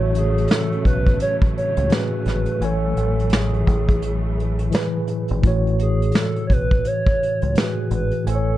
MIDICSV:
0, 0, Header, 1, 6, 480
1, 0, Start_track
1, 0, Key_signature, 3, "minor"
1, 0, Tempo, 705882
1, 1776, Time_signature, 4, 2, 24, 8
1, 5831, End_track
2, 0, Start_track
2, 0, Title_t, "Soft synth lead"
2, 0, Program_c, 0, 80
2, 119, Note_on_c, 0, 68, 93
2, 356, Note_on_c, 0, 69, 106
2, 366, Note_off_c, 0, 68, 0
2, 586, Note_off_c, 0, 69, 0
2, 590, Note_on_c, 0, 71, 104
2, 807, Note_off_c, 0, 71, 0
2, 830, Note_on_c, 0, 73, 120
2, 925, Note_off_c, 0, 73, 0
2, 1069, Note_on_c, 0, 73, 86
2, 1315, Note_on_c, 0, 71, 86
2, 1325, Note_off_c, 0, 73, 0
2, 1798, Note_on_c, 0, 69, 100
2, 1809, Note_off_c, 0, 71, 0
2, 2279, Note_on_c, 0, 68, 86
2, 2289, Note_off_c, 0, 69, 0
2, 3228, Note_off_c, 0, 68, 0
2, 3955, Note_on_c, 0, 68, 92
2, 4189, Note_on_c, 0, 69, 96
2, 4199, Note_off_c, 0, 68, 0
2, 4387, Note_off_c, 0, 69, 0
2, 4401, Note_on_c, 0, 73, 76
2, 4438, Note_on_c, 0, 71, 111
2, 4448, Note_off_c, 0, 73, 0
2, 4672, Note_on_c, 0, 73, 127
2, 4682, Note_off_c, 0, 71, 0
2, 5144, Note_off_c, 0, 73, 0
2, 5156, Note_on_c, 0, 71, 92
2, 5370, Note_off_c, 0, 71, 0
2, 5400, Note_on_c, 0, 71, 100
2, 5612, Note_off_c, 0, 71, 0
2, 5640, Note_on_c, 0, 69, 99
2, 5831, Note_off_c, 0, 69, 0
2, 5831, End_track
3, 0, Start_track
3, 0, Title_t, "Tine electric piano"
3, 0, Program_c, 1, 4
3, 0, Note_on_c, 1, 45, 85
3, 0, Note_on_c, 1, 52, 73
3, 0, Note_on_c, 1, 66, 84
3, 0, Note_on_c, 1, 73, 111
3, 3, Control_c, 1, 64, 127
3, 580, Note_off_c, 1, 45, 0
3, 586, Note_off_c, 1, 52, 0
3, 592, Note_off_c, 1, 66, 0
3, 620, Note_off_c, 1, 73, 0
3, 1271, Note_on_c, 1, 45, 74
3, 1284, Note_on_c, 1, 52, 60
3, 1296, Note_on_c, 1, 66, 65
3, 1308, Note_on_c, 1, 68, 87
3, 1676, Note_off_c, 1, 45, 0
3, 1683, Note_off_c, 1, 52, 0
3, 1689, Note_off_c, 1, 66, 0
3, 1695, Note_off_c, 1, 68, 0
3, 1760, Note_on_c, 1, 45, 75
3, 1772, Note_on_c, 1, 52, 68
3, 1784, Note_on_c, 1, 80, 67
3, 1786, Control_c, 1, 64, 0
3, 1796, Note_on_c, 1, 73, 84
3, 1910, Control_c, 1, 64, 127
3, 2499, Note_off_c, 1, 45, 0
3, 2505, Note_off_c, 1, 52, 0
3, 2511, Note_off_c, 1, 80, 0
3, 2517, Note_off_c, 1, 73, 0
3, 3192, Note_on_c, 1, 45, 88
3, 3204, Note_on_c, 1, 52, 85
3, 3218, Note_on_c, 1, 68, 77
3, 3230, Note_on_c, 1, 71, 86
3, 3597, Note_off_c, 1, 45, 0
3, 3603, Note_off_c, 1, 52, 0
3, 3610, Note_off_c, 1, 68, 0
3, 3616, Note_off_c, 1, 71, 0
3, 3688, Note_on_c, 1, 45, 92
3, 3700, Note_on_c, 1, 52, 75
3, 3704, Control_c, 1, 64, 0
3, 3711, Note_on_c, 1, 66, 70
3, 3722, Note_on_c, 1, 73, 97
3, 3820, Control_c, 1, 64, 127
3, 4423, Note_off_c, 1, 45, 0
3, 4429, Note_off_c, 1, 52, 0
3, 4435, Note_off_c, 1, 66, 0
3, 4440, Note_off_c, 1, 73, 0
3, 5122, Note_on_c, 1, 45, 76
3, 5134, Note_on_c, 1, 52, 74
3, 5147, Note_on_c, 1, 66, 63
3, 5159, Note_on_c, 1, 68, 79
3, 5522, Note_off_c, 1, 45, 0
3, 5528, Note_off_c, 1, 52, 0
3, 5534, Note_off_c, 1, 66, 0
3, 5540, Note_off_c, 1, 68, 0
3, 5597, Note_on_c, 1, 45, 69
3, 5609, Note_on_c, 1, 52, 63
3, 5622, Note_on_c, 1, 80, 68
3, 5625, Control_c, 1, 64, 0
3, 5635, Note_on_c, 1, 72, 58
3, 5677, Note_on_c, 1, 73, 87
3, 5681, Note_off_c, 1, 72, 0
3, 5735, Control_c, 1, 64, 127
3, 5831, Note_off_c, 1, 45, 0
3, 5831, Note_off_c, 1, 52, 0
3, 5831, Note_off_c, 1, 73, 0
3, 5831, Note_off_c, 1, 80, 0
3, 5831, End_track
4, 0, Start_track
4, 0, Title_t, "String section"
4, 0, Program_c, 2, 48
4, 0, Note_on_c, 2, 49, 69
4, 0, Note_on_c, 2, 54, 59
4, 0, Note_on_c, 2, 57, 71
4, 1750, Note_off_c, 2, 54, 0
4, 1760, Note_off_c, 2, 49, 0
4, 1784, Note_on_c, 2, 52, 63
4, 1785, Note_on_c, 2, 54, 64
4, 3672, Note_off_c, 2, 57, 0
4, 3681, Note_off_c, 2, 52, 0
4, 3681, Note_off_c, 2, 54, 0
4, 5831, End_track
5, 0, Start_track
5, 0, Title_t, "Fingered electric bass"
5, 0, Program_c, 3, 33
5, 0, Note_on_c, 3, 33, 94
5, 311, Note_off_c, 3, 33, 0
5, 581, Note_on_c, 3, 35, 87
5, 797, Note_off_c, 3, 35, 0
5, 1207, Note_on_c, 3, 37, 100
5, 1289, Note_off_c, 3, 37, 0
5, 1537, Note_on_c, 3, 32, 87
5, 1672, Note_off_c, 3, 32, 0
5, 1776, Note_on_c, 3, 33, 90
5, 1994, Note_off_c, 3, 33, 0
5, 2019, Note_on_c, 3, 33, 80
5, 2470, Note_off_c, 3, 33, 0
5, 2500, Note_on_c, 3, 33, 80
5, 3191, Note_off_c, 3, 33, 0
5, 3610, Note_on_c, 3, 32, 89
5, 3691, Note_off_c, 3, 32, 0
5, 3697, Note_on_c, 3, 33, 99
5, 4149, Note_off_c, 3, 33, 0
5, 4421, Note_on_c, 3, 35, 84
5, 4637, Note_off_c, 3, 35, 0
5, 5051, Note_on_c, 3, 37, 89
5, 5131, Note_off_c, 3, 37, 0
5, 5379, Note_on_c, 3, 32, 92
5, 5513, Note_off_c, 3, 32, 0
5, 5622, Note_on_c, 3, 33, 89
5, 5831, Note_off_c, 3, 33, 0
5, 5831, End_track
6, 0, Start_track
6, 0, Title_t, "Drums"
6, 101, Note_on_c, 9, 42, 61
6, 169, Note_off_c, 9, 42, 0
6, 257, Note_on_c, 9, 42, 48
6, 324, Note_off_c, 9, 42, 0
6, 324, Note_on_c, 9, 42, 69
6, 347, Note_on_c, 9, 38, 107
6, 392, Note_off_c, 9, 42, 0
6, 415, Note_off_c, 9, 38, 0
6, 488, Note_on_c, 9, 42, 34
6, 556, Note_off_c, 9, 42, 0
6, 580, Note_on_c, 9, 36, 72
6, 587, Note_on_c, 9, 42, 66
6, 648, Note_off_c, 9, 36, 0
6, 655, Note_off_c, 9, 42, 0
6, 724, Note_on_c, 9, 36, 95
6, 729, Note_on_c, 9, 42, 50
6, 792, Note_off_c, 9, 36, 0
6, 797, Note_off_c, 9, 42, 0
6, 814, Note_on_c, 9, 42, 85
6, 882, Note_off_c, 9, 42, 0
6, 964, Note_on_c, 9, 36, 97
6, 1032, Note_off_c, 9, 36, 0
6, 1071, Note_on_c, 9, 42, 59
6, 1139, Note_off_c, 9, 42, 0
6, 1201, Note_on_c, 9, 42, 55
6, 1269, Note_off_c, 9, 42, 0
6, 1290, Note_on_c, 9, 42, 74
6, 1308, Note_on_c, 9, 38, 119
6, 1358, Note_off_c, 9, 42, 0
6, 1376, Note_off_c, 9, 38, 0
6, 1532, Note_on_c, 9, 42, 58
6, 1548, Note_on_c, 9, 38, 35
6, 1600, Note_off_c, 9, 42, 0
6, 1616, Note_off_c, 9, 38, 0
6, 1669, Note_on_c, 9, 42, 47
6, 1737, Note_off_c, 9, 42, 0
6, 1779, Note_on_c, 9, 42, 75
6, 1847, Note_off_c, 9, 42, 0
6, 2018, Note_on_c, 9, 42, 60
6, 2086, Note_off_c, 9, 42, 0
6, 2172, Note_on_c, 9, 42, 48
6, 2240, Note_off_c, 9, 42, 0
6, 2241, Note_on_c, 9, 42, 67
6, 2264, Note_on_c, 9, 38, 100
6, 2309, Note_off_c, 9, 42, 0
6, 2332, Note_off_c, 9, 38, 0
6, 2405, Note_on_c, 9, 42, 33
6, 2473, Note_off_c, 9, 42, 0
6, 2498, Note_on_c, 9, 36, 82
6, 2505, Note_on_c, 9, 42, 64
6, 2566, Note_off_c, 9, 36, 0
6, 2573, Note_off_c, 9, 42, 0
6, 2643, Note_on_c, 9, 36, 88
6, 2647, Note_on_c, 9, 42, 51
6, 2711, Note_off_c, 9, 36, 0
6, 2715, Note_off_c, 9, 42, 0
6, 2734, Note_on_c, 9, 42, 78
6, 2802, Note_off_c, 9, 42, 0
6, 2991, Note_on_c, 9, 42, 54
6, 3059, Note_off_c, 9, 42, 0
6, 3119, Note_on_c, 9, 42, 55
6, 3187, Note_off_c, 9, 42, 0
6, 3210, Note_on_c, 9, 42, 75
6, 3228, Note_on_c, 9, 38, 120
6, 3278, Note_off_c, 9, 42, 0
6, 3296, Note_off_c, 9, 38, 0
6, 3450, Note_on_c, 9, 42, 57
6, 3518, Note_off_c, 9, 42, 0
6, 3590, Note_on_c, 9, 42, 40
6, 3658, Note_off_c, 9, 42, 0
6, 3696, Note_on_c, 9, 36, 106
6, 3698, Note_on_c, 9, 42, 77
6, 3764, Note_off_c, 9, 36, 0
6, 3766, Note_off_c, 9, 42, 0
6, 3854, Note_on_c, 9, 42, 34
6, 3922, Note_off_c, 9, 42, 0
6, 3939, Note_on_c, 9, 42, 57
6, 4007, Note_off_c, 9, 42, 0
6, 4093, Note_on_c, 9, 42, 49
6, 4160, Note_off_c, 9, 42, 0
6, 4160, Note_on_c, 9, 42, 70
6, 4183, Note_on_c, 9, 38, 102
6, 4228, Note_off_c, 9, 42, 0
6, 4251, Note_off_c, 9, 38, 0
6, 4324, Note_on_c, 9, 42, 35
6, 4392, Note_off_c, 9, 42, 0
6, 4420, Note_on_c, 9, 36, 78
6, 4426, Note_on_c, 9, 42, 65
6, 4488, Note_off_c, 9, 36, 0
6, 4494, Note_off_c, 9, 42, 0
6, 4565, Note_on_c, 9, 36, 88
6, 4568, Note_on_c, 9, 42, 44
6, 4633, Note_off_c, 9, 36, 0
6, 4636, Note_off_c, 9, 42, 0
6, 4656, Note_on_c, 9, 42, 83
6, 4724, Note_off_c, 9, 42, 0
6, 4804, Note_on_c, 9, 36, 107
6, 4872, Note_off_c, 9, 36, 0
6, 4915, Note_on_c, 9, 42, 59
6, 4983, Note_off_c, 9, 42, 0
6, 5043, Note_on_c, 9, 42, 52
6, 5111, Note_off_c, 9, 42, 0
6, 5135, Note_on_c, 9, 42, 76
6, 5153, Note_on_c, 9, 38, 116
6, 5203, Note_off_c, 9, 42, 0
6, 5221, Note_off_c, 9, 38, 0
6, 5376, Note_on_c, 9, 42, 60
6, 5444, Note_off_c, 9, 42, 0
6, 5515, Note_on_c, 9, 42, 43
6, 5583, Note_off_c, 9, 42, 0
6, 5623, Note_on_c, 9, 42, 85
6, 5691, Note_off_c, 9, 42, 0
6, 5831, End_track
0, 0, End_of_file